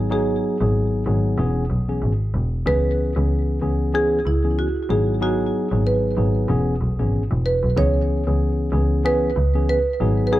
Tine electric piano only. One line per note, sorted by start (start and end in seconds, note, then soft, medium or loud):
0.11 0.57 F#3 medium
0.11 0.57 B3 medium
0.11 0.57 D#4 medium
0.11 0.57 G#4 loud
0.61 1.03 F#3 medium
0.61 1.03 B3 medium
0.61 1.03 D#4 medium
0.61 1.03 G#4 medium
1.06 1.36 F#3 medium
1.06 1.36 B3 medium
1.06 1.36 D#4 medium
1.06 1.37 G#4 medium
1.38 1.64 E3 medium
1.38 1.64 B3 medium
1.38 1.64 C#4 medium
1.38 1.64 G#4 loud
1.88 2.11 E3 medium
1.88 2.12 B3 medium
1.88 2.12 C#4 medium
1.88 2.12 G#4 medium
2.66 3.12 E3 medium
2.66 3.12 B3 medium
2.66 3.12 C#4 medium
2.66 3.12 G#4 loud
3.16 3.58 E3 medium
3.16 3.58 B3 medium
3.16 3.59 C#4 medium
3.16 3.59 G#4 medium
3.62 3.92 E3 medium
3.62 3.92 B3 medium
3.62 3.92 C#4 medium
3.62 3.92 G#4 medium
3.94 4.19 E3 medium
3.94 4.19 B3 medium
3.94 4.19 C#4 medium
3.94 4.19 G#4 loud
4.44 4.67 E3 medium
4.44 4.67 B3 medium
4.44 4.67 C#4 medium
4.44 4.67 G#4 medium
4.90 5.19 F#3 medium
4.90 5.19 B3 medium
4.90 5.19 D#4 medium
4.90 5.20 G#4 loud
5.21 5.67 F#3 medium
5.21 5.67 B3 medium
5.21 5.68 D#4 medium
5.21 5.68 G#4 loud
5.72 6.14 F#3 medium
5.72 6.14 B3 medium
5.72 6.14 D#4 medium
5.72 6.14 G#4 medium
6.17 6.47 F#3 medium
6.17 6.47 B3 medium
6.17 6.47 D#4 medium
6.17 6.47 G#4 medium
6.49 6.74 E3 medium
6.49 6.74 B3 medium
6.49 6.74 C#4 medium
6.49 6.74 G#4 loud
6.99 7.22 E3 medium
6.99 7.22 B3 medium
6.99 7.22 C#4 medium
6.99 7.22 G#4 medium
7.76 8.22 E3 medium
7.76 8.23 B3 medium
7.76 8.23 C#4 medium
7.76 8.23 G#4 loud
8.27 8.69 E3 medium
8.27 8.69 B3 medium
8.27 8.69 C#4 medium
8.27 8.69 G#4 medium
8.72 9.02 E3 medium
8.72 9.02 B3 medium
8.72 9.02 C#4 medium
8.72 9.02 G#4 medium
9.04 9.30 E3 medium
9.04 9.30 B3 medium
9.04 9.30 C#4 medium
9.04 9.30 G#4 loud
9.55 9.77 E3 medium
9.55 9.78 B3 medium
9.55 9.78 C#4 medium
9.55 9.78 G#4 medium
10.00 10.30 F#3 medium
10.00 10.30 B3 medium
10.00 10.30 D#4 medium
10.00 10.30 G#4 loud
10.32 10.40 F#3 loud
10.32 10.40 B3 medium
10.32 10.40 D#4 medium
10.32 10.40 G#4 loud